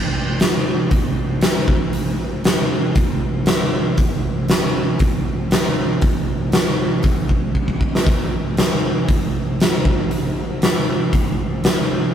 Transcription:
0, 0, Header, 1, 2, 480
1, 0, Start_track
1, 0, Tempo, 510638
1, 1819, Time_signature, 4, 2, 24, 8
1, 11413, End_track
2, 0, Start_track
2, 0, Title_t, "Drums"
2, 374, Note_on_c, 9, 46, 45
2, 384, Note_on_c, 9, 38, 99
2, 468, Note_off_c, 9, 46, 0
2, 478, Note_off_c, 9, 38, 0
2, 854, Note_on_c, 9, 46, 45
2, 858, Note_on_c, 9, 36, 89
2, 948, Note_off_c, 9, 46, 0
2, 952, Note_off_c, 9, 36, 0
2, 1329, Note_on_c, 9, 46, 52
2, 1340, Note_on_c, 9, 38, 98
2, 1423, Note_off_c, 9, 46, 0
2, 1434, Note_off_c, 9, 38, 0
2, 1578, Note_on_c, 9, 36, 91
2, 1672, Note_off_c, 9, 36, 0
2, 1814, Note_on_c, 9, 46, 45
2, 1908, Note_off_c, 9, 46, 0
2, 2296, Note_on_c, 9, 46, 41
2, 2307, Note_on_c, 9, 38, 101
2, 2390, Note_off_c, 9, 46, 0
2, 2401, Note_off_c, 9, 38, 0
2, 2777, Note_on_c, 9, 46, 42
2, 2780, Note_on_c, 9, 36, 95
2, 2871, Note_off_c, 9, 46, 0
2, 2874, Note_off_c, 9, 36, 0
2, 3251, Note_on_c, 9, 46, 47
2, 3262, Note_on_c, 9, 38, 107
2, 3345, Note_off_c, 9, 46, 0
2, 3356, Note_off_c, 9, 38, 0
2, 3736, Note_on_c, 9, 46, 42
2, 3740, Note_on_c, 9, 36, 93
2, 3830, Note_off_c, 9, 46, 0
2, 3834, Note_off_c, 9, 36, 0
2, 4216, Note_on_c, 9, 46, 44
2, 4226, Note_on_c, 9, 38, 92
2, 4310, Note_off_c, 9, 46, 0
2, 4320, Note_off_c, 9, 38, 0
2, 4694, Note_on_c, 9, 46, 46
2, 4702, Note_on_c, 9, 36, 92
2, 4788, Note_off_c, 9, 46, 0
2, 4796, Note_off_c, 9, 36, 0
2, 5179, Note_on_c, 9, 46, 51
2, 5190, Note_on_c, 9, 38, 101
2, 5273, Note_off_c, 9, 46, 0
2, 5284, Note_off_c, 9, 38, 0
2, 5654, Note_on_c, 9, 46, 45
2, 5661, Note_on_c, 9, 36, 96
2, 5748, Note_off_c, 9, 46, 0
2, 5755, Note_off_c, 9, 36, 0
2, 6131, Note_on_c, 9, 46, 47
2, 6142, Note_on_c, 9, 38, 101
2, 6225, Note_off_c, 9, 46, 0
2, 6236, Note_off_c, 9, 38, 0
2, 6605, Note_on_c, 9, 46, 42
2, 6617, Note_on_c, 9, 36, 92
2, 6699, Note_off_c, 9, 46, 0
2, 6711, Note_off_c, 9, 36, 0
2, 6856, Note_on_c, 9, 36, 71
2, 6950, Note_off_c, 9, 36, 0
2, 7097, Note_on_c, 9, 36, 56
2, 7191, Note_off_c, 9, 36, 0
2, 7219, Note_on_c, 9, 36, 55
2, 7313, Note_off_c, 9, 36, 0
2, 7339, Note_on_c, 9, 36, 70
2, 7433, Note_off_c, 9, 36, 0
2, 7474, Note_on_c, 9, 38, 68
2, 7568, Note_off_c, 9, 38, 0
2, 7581, Note_on_c, 9, 36, 96
2, 7581, Note_on_c, 9, 46, 44
2, 7675, Note_off_c, 9, 36, 0
2, 7675, Note_off_c, 9, 46, 0
2, 8059, Note_on_c, 9, 46, 43
2, 8069, Note_on_c, 9, 38, 100
2, 8153, Note_off_c, 9, 46, 0
2, 8163, Note_off_c, 9, 38, 0
2, 8540, Note_on_c, 9, 36, 90
2, 8540, Note_on_c, 9, 46, 45
2, 8634, Note_off_c, 9, 36, 0
2, 8634, Note_off_c, 9, 46, 0
2, 9027, Note_on_c, 9, 46, 51
2, 9038, Note_on_c, 9, 38, 106
2, 9121, Note_off_c, 9, 46, 0
2, 9132, Note_off_c, 9, 38, 0
2, 9261, Note_on_c, 9, 36, 87
2, 9355, Note_off_c, 9, 36, 0
2, 9504, Note_on_c, 9, 46, 45
2, 9598, Note_off_c, 9, 46, 0
2, 9982, Note_on_c, 9, 46, 47
2, 9993, Note_on_c, 9, 38, 97
2, 10076, Note_off_c, 9, 46, 0
2, 10087, Note_off_c, 9, 38, 0
2, 10462, Note_on_c, 9, 36, 89
2, 10462, Note_on_c, 9, 46, 44
2, 10556, Note_off_c, 9, 36, 0
2, 10556, Note_off_c, 9, 46, 0
2, 10939, Note_on_c, 9, 46, 47
2, 10950, Note_on_c, 9, 38, 108
2, 11033, Note_off_c, 9, 46, 0
2, 11044, Note_off_c, 9, 38, 0
2, 11413, End_track
0, 0, End_of_file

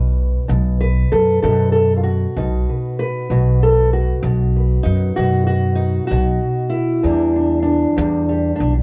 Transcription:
0, 0, Header, 1, 3, 480
1, 0, Start_track
1, 0, Tempo, 623053
1, 2544, Time_signature, 12, 3, 24, 8
1, 6802, End_track
2, 0, Start_track
2, 0, Title_t, "Steel-string acoustic guitar"
2, 0, Program_c, 0, 25
2, 0, Note_on_c, 0, 47, 81
2, 0, Note_on_c, 0, 71, 49
2, 368, Note_off_c, 0, 47, 0
2, 371, Note_on_c, 0, 47, 65
2, 618, Note_off_c, 0, 71, 0
2, 621, Note_on_c, 0, 71, 99
2, 861, Note_on_c, 0, 69, 91
2, 1088, Note_off_c, 0, 69, 0
2, 1098, Note_on_c, 0, 69, 87
2, 1104, Note_off_c, 0, 47, 0
2, 1107, Note_on_c, 0, 47, 87
2, 1317, Note_off_c, 0, 69, 0
2, 1326, Note_on_c, 0, 69, 85
2, 1343, Note_off_c, 0, 71, 0
2, 1511, Note_off_c, 0, 69, 0
2, 1514, Note_on_c, 0, 65, 53
2, 1564, Note_off_c, 0, 65, 0
2, 1567, Note_on_c, 0, 66, 81
2, 1818, Note_off_c, 0, 47, 0
2, 1827, Note_on_c, 0, 47, 72
2, 1833, Note_on_c, 0, 63, 47
2, 2075, Note_on_c, 0, 71, 45
2, 2302, Note_off_c, 0, 71, 0
2, 2305, Note_on_c, 0, 71, 98
2, 2517, Note_off_c, 0, 47, 0
2, 2520, Note_off_c, 0, 63, 0
2, 2536, Note_off_c, 0, 66, 0
2, 2552, Note_on_c, 0, 47, 81
2, 2556, Note_on_c, 0, 66, 57
2, 2790, Note_off_c, 0, 66, 0
2, 2796, Note_on_c, 0, 69, 100
2, 3025, Note_off_c, 0, 69, 0
2, 3028, Note_on_c, 0, 66, 79
2, 3256, Note_off_c, 0, 47, 0
2, 3265, Note_off_c, 0, 71, 0
2, 3265, Note_on_c, 0, 47, 68
2, 3278, Note_on_c, 0, 59, 44
2, 3516, Note_on_c, 0, 71, 46
2, 3723, Note_on_c, 0, 63, 93
2, 3967, Note_off_c, 0, 66, 0
2, 3976, Note_on_c, 0, 66, 106
2, 3985, Note_off_c, 0, 47, 0
2, 3993, Note_on_c, 0, 47, 81
2, 4203, Note_off_c, 0, 66, 0
2, 4212, Note_on_c, 0, 66, 95
2, 4424, Note_off_c, 0, 63, 0
2, 4433, Note_on_c, 0, 63, 83
2, 4668, Note_off_c, 0, 66, 0
2, 4677, Note_on_c, 0, 66, 112
2, 4701, Note_off_c, 0, 47, 0
2, 4710, Note_on_c, 0, 47, 75
2, 5156, Note_off_c, 0, 71, 0
2, 5159, Note_on_c, 0, 64, 98
2, 5169, Note_off_c, 0, 63, 0
2, 5399, Note_off_c, 0, 47, 0
2, 5411, Note_off_c, 0, 66, 0
2, 5417, Note_on_c, 0, 40, 74
2, 5424, Note_off_c, 0, 59, 0
2, 5427, Note_on_c, 0, 52, 50
2, 5431, Note_on_c, 0, 55, 56
2, 5437, Note_on_c, 0, 62, 50
2, 5667, Note_off_c, 0, 62, 0
2, 5670, Note_on_c, 0, 62, 51
2, 5872, Note_off_c, 0, 62, 0
2, 5875, Note_on_c, 0, 62, 85
2, 6134, Note_off_c, 0, 40, 0
2, 6137, Note_on_c, 0, 40, 66
2, 6142, Note_off_c, 0, 55, 0
2, 6145, Note_on_c, 0, 55, 45
2, 6373, Note_off_c, 0, 64, 0
2, 6378, Note_off_c, 0, 55, 0
2, 6387, Note_on_c, 0, 55, 49
2, 6583, Note_off_c, 0, 62, 0
2, 6592, Note_on_c, 0, 62, 80
2, 6716, Note_off_c, 0, 62, 0
2, 6802, Note_off_c, 0, 40, 0
2, 6802, Note_off_c, 0, 52, 0
2, 6802, Note_off_c, 0, 55, 0
2, 6802, End_track
3, 0, Start_track
3, 0, Title_t, "Upright bass"
3, 0, Program_c, 1, 32
3, 0, Note_on_c, 1, 35, 94
3, 283, Note_off_c, 1, 35, 0
3, 379, Note_on_c, 1, 35, 101
3, 794, Note_off_c, 1, 35, 0
3, 866, Note_on_c, 1, 42, 93
3, 1072, Note_off_c, 1, 42, 0
3, 1106, Note_on_c, 1, 42, 104
3, 1725, Note_off_c, 1, 42, 0
3, 1822, Note_on_c, 1, 35, 91
3, 2029, Note_off_c, 1, 35, 0
3, 2542, Note_on_c, 1, 35, 94
3, 3163, Note_off_c, 1, 35, 0
3, 3256, Note_on_c, 1, 35, 101
3, 3673, Note_off_c, 1, 35, 0
3, 3739, Note_on_c, 1, 42, 87
3, 3948, Note_off_c, 1, 42, 0
3, 3982, Note_on_c, 1, 42, 88
3, 4603, Note_off_c, 1, 42, 0
3, 4705, Note_on_c, 1, 35, 93
3, 4912, Note_off_c, 1, 35, 0
3, 5423, Note_on_c, 1, 40, 100
3, 6044, Note_off_c, 1, 40, 0
3, 6146, Note_on_c, 1, 40, 110
3, 6559, Note_off_c, 1, 40, 0
3, 6627, Note_on_c, 1, 35, 94
3, 6802, Note_off_c, 1, 35, 0
3, 6802, End_track
0, 0, End_of_file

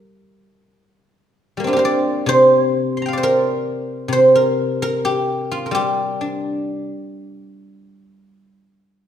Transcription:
0, 0, Header, 1, 2, 480
1, 0, Start_track
1, 0, Tempo, 910470
1, 1197, Time_signature, 4, 2, 24, 8
1, 2640, Tempo, 940439
1, 4080, Tempo, 1016949
1, 4668, End_track
2, 0, Start_track
2, 0, Title_t, "Guzheng"
2, 0, Program_c, 0, 107
2, 0, Note_on_c, 0, 55, 58
2, 0, Note_on_c, 0, 70, 89
2, 234, Note_off_c, 0, 55, 0
2, 407, Note_off_c, 0, 70, 0
2, 828, Note_on_c, 0, 55, 43
2, 842, Note_on_c, 0, 58, 50
2, 865, Note_on_c, 0, 60, 52
2, 880, Note_on_c, 0, 62, 54
2, 887, Note_on_c, 0, 65, 53
2, 912, Note_on_c, 0, 67, 58
2, 919, Note_off_c, 0, 55, 0
2, 931, Note_on_c, 0, 70, 69
2, 943, Note_on_c, 0, 72, 63
2, 975, Note_on_c, 0, 74, 86
2, 1193, Note_on_c, 0, 48, 62
2, 1203, Note_off_c, 0, 72, 0
2, 1206, Note_on_c, 0, 72, 111
2, 1566, Note_on_c, 0, 84, 44
2, 1592, Note_on_c, 0, 82, 45
2, 1612, Note_on_c, 0, 79, 54
2, 1626, Note_on_c, 0, 77, 57
2, 1649, Note_off_c, 0, 74, 0
2, 1651, Note_on_c, 0, 74, 64
2, 1672, Note_off_c, 0, 72, 0
2, 1674, Note_on_c, 0, 72, 66
2, 1702, Note_off_c, 0, 70, 0
2, 1704, Note_on_c, 0, 70, 96
2, 2146, Note_off_c, 0, 48, 0
2, 2153, Note_off_c, 0, 67, 0
2, 2153, Note_on_c, 0, 48, 60
2, 2173, Note_off_c, 0, 72, 0
2, 2175, Note_on_c, 0, 72, 92
2, 2219, Note_off_c, 0, 65, 0
2, 2254, Note_off_c, 0, 84, 0
2, 2294, Note_off_c, 0, 70, 0
2, 2296, Note_on_c, 0, 70, 79
2, 2331, Note_off_c, 0, 82, 0
2, 2355, Note_off_c, 0, 62, 0
2, 2430, Note_off_c, 0, 79, 0
2, 2448, Note_off_c, 0, 60, 0
2, 2504, Note_off_c, 0, 77, 0
2, 2540, Note_off_c, 0, 70, 0
2, 2541, Note_off_c, 0, 58, 0
2, 2542, Note_on_c, 0, 70, 96
2, 2624, Note_off_c, 0, 74, 0
2, 2661, Note_on_c, 0, 67, 91
2, 2899, Note_on_c, 0, 65, 73
2, 2970, Note_off_c, 0, 70, 0
2, 2972, Note_on_c, 0, 70, 48
2, 3000, Note_on_c, 0, 55, 65
2, 3015, Note_off_c, 0, 67, 0
2, 3017, Note_on_c, 0, 67, 88
2, 3201, Note_off_c, 0, 72, 0
2, 3253, Note_on_c, 0, 62, 47
2, 3602, Note_off_c, 0, 48, 0
2, 4057, Note_off_c, 0, 70, 0
2, 4180, Note_off_c, 0, 65, 0
2, 4199, Note_off_c, 0, 62, 0
2, 4431, Note_off_c, 0, 55, 0
2, 4545, Note_off_c, 0, 67, 0
2, 4668, End_track
0, 0, End_of_file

